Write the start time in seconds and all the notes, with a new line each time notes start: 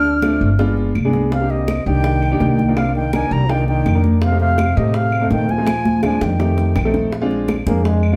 Already playing: D2 D4 F6
0.05 high bongo, high conga
0.22 A3 C4 D4 F4, high bongo, high conga, claves
0.41 G1
0.59 G#3 B3 D4 F4, high bongo, high conga
0.77 high conga
0.95 C2, high conga, claves
1.05 G#3 B3 D4 G#4
1.13 low bongo
1.31 C3 F5, high bongo, high conga
1.41 A#3 D4 D#4 G4
1.50 C3 D#5, high bongo, high conga
1.68 high bongo, high conga, claves
1.86 C2 D#3 A#3 D4 D#4 G4 G5
2.04 high bongo, high conga
2.22 high bongo, high conga, claves
2.31 A#3 D4 D#4 G4
2.40 C2, high bongo, low bongo, high conga
2.58 high bongo, high conga
2.68 A#3 D4 D#4 F4
2.77 C3 F5, high bongo, high conga, claves
2.95 D#3 G5, high bongo, high conga
3.13 D#3 A#3 D4 D#4 A#4 G#5, high bongo, high conga, claves
3.31 C2 G3 A#5
3.49 D#3 A#3 D4 D#4 F4 G5, high bongo, high conga
3.68 D#3 G5, high bongo, high conga
3.86 F2, high bongo, low bongo, high conga, claves
3.95 A#3 D4 D#4 A#4
4.04 high bongo, high conga
4.22 C3 F5, high bongo, high conga
4.32 A3 C4 D#4 G4
4.40 C3 F5, high bongo, high conga
4.58 high bongo, high conga, claves
4.76 A2 C3 A3 C4 D#4 G4 D#5
4.94 C3 F5, high bongo, high conga
5.12 high bongo, high conga, claves
5.21 A3 C4 D#4 A4
5.30 A#2 D#3 G5, high bongo, low bongo, high conga
5.48 F3 G#5, high bongo, high conga
5.58 A3 C4 D#4 F4
5.67 high bongo, high conga, claves
5.85 high bongo, high conga
6.03 F3 G#3 C4 D4 F4 G#5, high bongo, low conga, claves
6.21 F2 D#3 G5, high bongo
6.39 A3 C4 D#4 G4, low bongo
6.58 low bongo
6.76 A#1, low bongo, claves
6.85 A3 C4 D#4 A4
6.94 low bongo, low conga
7.12 high bongo, high conga
7.21 G#3 C4 D4 F4
7.30 high bongo, high conga
7.48 high bongo, high conga, claves
7.66 F2 G#3 A#3 C4 D4 G#4, high bongo, high conga
7.85 G#3, high bongo, high conga
8.03 high conga, claves
8.12 G#3 C4 D4 F4